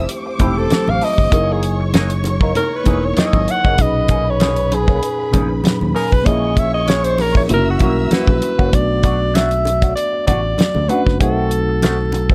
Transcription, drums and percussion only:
0.09 closed hi-hat medium
0.39 kick medium
0.39 closed hi-hat medium
0.39 muted conga soft
0.39 low conga medium
0.70 snare loud
0.70 closed hi-hat medium
0.70 high conga medium
0.88 high conga medium
1.01 open hi-hat medium
1.18 kick medium
1.32 kick loud
1.32 closed hi-hat medium
1.32 muted conga soft
1.63 closed hi-hat medium
1.94 snare loud
1.94 closed hi-hat medium
1.94 high conga medium
2.10 closed hi-hat soft
2.24 closed hi-hat medium
2.24 muted conga soft
2.41 kick medium
2.55 closed hi-hat medium
2.55 low conga medium
2.85 kick medium
2.85 closed hi-hat medium
2.85 muted conga soft
3.17 snare loud
3.17 closed hi-hat medium
3.17 high conga medium
3.33 kick medium
3.33 high conga medium
3.48 closed hi-hat medium
3.65 kick medium
3.78 kick loud
3.78 closed hi-hat medium
4.08 kick loud
4.08 closed hi-hat medium
4.40 snare loud
4.40 closed hi-hat medium
4.40 high conga medium
4.56 closed hi-hat soft
4.72 closed hi-hat medium
4.72 muted conga soft
4.88 kick medium
5.03 closed hi-hat medium
5.33 kick medium
5.33 closed hi-hat medium
5.33 muted conga soft
5.33 low conga medium
5.64 snare loud
5.64 closed hi-hat medium
5.64 high conga medium
5.81 high conga medium
5.96 open hi-hat soft
6.12 kick medium
6.26 kick loud
6.26 closed hi-hat medium
6.57 kick loud
6.57 closed hi-hat medium
6.88 snare loud
6.88 closed hi-hat medium
6.88 high conga medium
7.04 closed hi-hat medium
7.18 open hi-hat soft
7.18 muted conga soft
7.35 kick medium
7.49 closed hi-hat medium
7.49 low conga medium
7.79 kick medium
7.79 closed hi-hat medium
7.79 muted conga medium
8.11 snare loud
8.11 closed hi-hat medium
8.11 high conga medium
8.27 kick medium
8.27 high conga medium
8.42 closed hi-hat medium
8.59 kick medium
8.73 kick loud
8.73 closed hi-hat medium
8.73 muted conga soft
9.03 kick medium
9.03 closed hi-hat medium
9.35 snare medium
9.35 closed hi-hat medium
9.35 high conga medium
9.51 closed hi-hat soft
9.65 closed hi-hat medium
9.65 muted conga soft
9.82 kick medium
9.82 closed hi-hat medium
9.97 closed hi-hat medium
10.28 kick medium
10.28 closed hi-hat medium
10.28 muted conga soft
10.28 low conga medium
10.58 snare loud
10.58 closed hi-hat medium
10.58 high conga medium
10.74 high conga medium
10.89 closed hi-hat medium
11.07 kick medium
11.07 snare soft
11.21 kick loud
11.21 closed hi-hat medium
11.51 closed hi-hat medium
11.82 snare loud
11.82 closed hi-hat medium
11.82 high conga medium
12.12 closed hi-hat medium
12.12 muted conga soft
12.30 kick medium

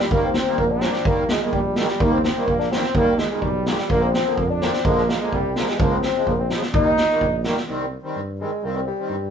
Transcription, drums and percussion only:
0.11 kick medium
0.34 snare medium
0.58 kick medium
0.81 snare medium
0.93 snare medium
1.05 kick loud
1.29 snare medium
1.41 snare soft
1.53 kick medium
1.76 snare medium
1.88 snare medium
2.00 kick medium
2.24 snare medium
2.48 kick medium
2.60 snare soft
2.72 snare medium
2.83 snare medium
2.95 kick medium
3.18 snare medium
3.42 kick medium
3.66 snare medium
3.78 snare medium
3.90 kick medium
4.14 snare medium
4.38 kick medium
4.61 snare medium
4.73 snare medium
4.85 kick medium
4.97 snare soft
5.09 snare medium
5.33 kick medium
5.56 snare medium
5.68 snare medium
5.80 kick loud
6.02 snare medium
6.27 kick medium
6.50 snare medium
6.62 snare medium
6.74 kick loud
6.97 snare medium
7.10 snare soft
7.21 kick medium
7.44 snare medium
7.57 snare medium

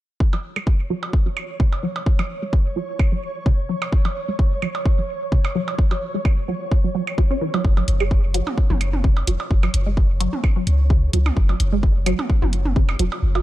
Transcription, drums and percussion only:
0.20 kick loud
0.33 percussion blips medium
0.56 percussion blips medium
0.67 kick loud
1.03 percussion blips soft
1.13 kick loud
1.37 percussion blips medium
1.60 kick loud
1.72 percussion blips medium
1.96 percussion blips medium
2.06 kick loud
2.19 percussion blips medium
2.53 kick loud
2.99 kick loud
2.99 percussion blips medium
3.46 kick loud
3.82 percussion blips medium
3.92 kick loud
4.05 percussion blips medium
4.39 kick loud
4.62 percussion blips medium
4.75 percussion blips medium
4.86 kick loud
5.32 kick loud
5.45 percussion blips medium
5.68 percussion blips medium
5.79 kick loud
5.91 percussion blips medium
6.25 kick loud
6.25 percussion blips medium
6.72 kick loud
7.07 percussion blips medium
7.18 kick loud
7.54 percussion blips medium
7.65 kick loud
7.77 percussion blips medium
7.88 closed hi-hat medium
8.00 percussion blips medium
8.11 kick loud
8.34 closed hi-hat medium
8.47 mid tom medium
8.47 percussion blips medium
8.58 kick loud
8.70 mid tom medium
8.81 closed hi-hat medium
8.81 percussion blips medium
8.93 mid tom medium
9.04 kick loud
9.17 percussion blips medium
9.27 closed hi-hat medium
9.40 percussion blips medium
9.51 kick loud
9.63 percussion blips medium
9.74 closed hi-hat medium
9.97 kick loud
10.20 closed hi-hat medium
10.33 mid tom medium
10.44 kick loud
10.44 percussion blips medium
10.67 closed hi-hat medium
10.90 kick loud
11.13 closed hi-hat medium
11.26 mid tom medium
11.26 percussion blips medium
11.37 kick loud
11.49 percussion blips medium
11.60 closed hi-hat medium
11.83 kick loud
12.06 closed hi-hat medium
12.06 percussion blips medium
12.19 mid tom medium
12.19 percussion blips soft
12.30 kick loud
12.42 mid tom medium
12.53 closed hi-hat medium
12.65 mid tom medium
12.76 kick loud
12.89 percussion blips medium
12.99 closed hi-hat medium
13.12 percussion blips medium
13.35 percussion blips medium

